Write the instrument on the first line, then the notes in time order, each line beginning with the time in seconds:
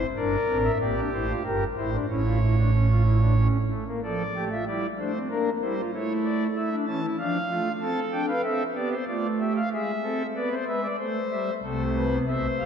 pipe organ
0.16 G1 G2 D4 A#4 D5
0.48 A1 A2 C4
0.64 E5
0.80 A#1 A#2 A#3 G4 D5
0.96 D4
1.13 A1 A2 E4 C5
1.29 F4
1.44 G1 G2 G4 A#4
1.76 A1 A2 E4 C5
1.93 D4
2.09 A1 A2 C#4 E4 C#5
2.25 F4
2.41 E4
2.57 D4
2.73 C#4
2.89 F4
3.04 E4
3.21 D4
3.37 C#4
3.70 A3
3.87 A#3
4.03 F3 A4 D5
4.35 A3 G4
4.51 F4 E5
4.67 G3 E4 D5
4.99 A3 D4 C5
5.15 C4
5.30 A#3 D4 A#4
5.61 G3 E4 C5
5.77 F4
5.93 A3 E4 C#5
6.24 D5
6.56 A3 E4 E5
6.72 D4
6.87 E3 C#4 A5
7.03 E4
7.18 F3 D4 F5
7.50 A3 F4
7.80 C4 A4 A5
8.12 D4 G5
8.28 B4 F5
8.43 C4 A4 E5
8.75 B3 G4 D5
8.91 C5
9.07 A3 F4 D5
9.39 G4 E5
9.56 F5
9.72 G#3 G#4 E5
10.03 C4 A4
10.35 B3 B4 D5
10.51 C5
10.67 G#3 B4 E5
10.83 D5
10.98 A3 C5
11.31 G3 E5
11.63 C2 C3 A3 A4 C5
11.95 B4
12.11 B3
12.27 B1 B2 A3 C5 E5
12.59 A1 A2 G3 F5